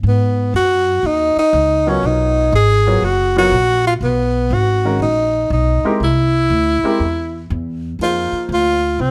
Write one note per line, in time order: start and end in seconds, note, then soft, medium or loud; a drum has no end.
0.03 0.52 G#2 medium
0.08 0.53 B3 medium
0.54 1.03 F#2 medium
0.54 1.08 F#4 loud
1.03 1.34 D#2 medium
1.03 1.38 D#4 medium
1.36 1.91 D#4 medium
1.36 muted upright bass stroke soft
1.53 2.02 C#2 medium
1.86 2.50 F#3 medium
1.86 2.50 B3 medium
1.86 2.08 C#4 medium
1.86 2.50 F4 medium
1.86 2.50 A#4 medium
1.86 2.50 C#5 medium
2.03 2.51 B1 medium
2.03 2.55 D#4 loud
2.52 3.01 G#1 medium
2.52 3.06 G#4 loud
2.87 3.01 F#3 medium
2.87 3.02 B3 medium
2.87 3.02 F4 medium
2.87 3.02 A#4 medium
2.87 3.02 C#5 medium
3.02 3.51 F#1 medium
3.02 3.36 F#4 medium
3.36 3.51 F#3 medium
3.36 3.51 B3 medium
3.36 3.51 F4 medium
3.36 3.83 F#4 loud
3.36 3.52 A#4 medium
3.36 3.52 C#5 medium
3.51 4.00 A#1 medium
3.87 3.94 F4 medium
4.01 4.50 B1 medium
4.01 4.55 B3 medium
4.51 4.99 G#1 medium
4.51 5.01 F#4 medium
4.85 5.00 D#3 medium
4.85 5.00 G#3 medium
4.85 5.00 C#4 medium
4.85 5.00 F#4 medium
4.85 5.00 A#4 medium
5.00 5.49 A#1 medium
5.00 5.48 D#4 medium
5.50 5.81 B1 loud
5.50 5.98 D#4 medium
5.83 5.99 G#3 medium
5.83 6.00 C4 medium
5.83 6.00 E4 medium
5.83 6.00 G4 medium
5.83 6.00 A#4 medium
5.83 muted upright bass stroke soft
6.00 6.49 C2 medium
6.00 7.47 E4 medium
6.50 6.81 D2 medium
6.83 6.99 G#3 medium
6.83 6.99 C4 medium
6.83 6.99 E4 medium
6.83 6.99 G4 medium
6.83 6.99 A#4 medium
6.83 muted upright bass stroke soft
7.00 7.48 E2 medium
7.50 7.98 E2 medium
7.99 8.30 F2 medium
7.99 8.76 F3 medium
7.99 8.77 A#3 medium
7.99 8.77 D#4 soft
7.99 8.47 F4 medium
7.99 8.77 G#4 soft
7.99 8.77 C5 medium
8.32 muted upright bass stroke soft
8.49 8.97 D2 medium
8.53 9.02 F4 loud
8.99 9.11 C2 medium
8.99 9.11 C4 medium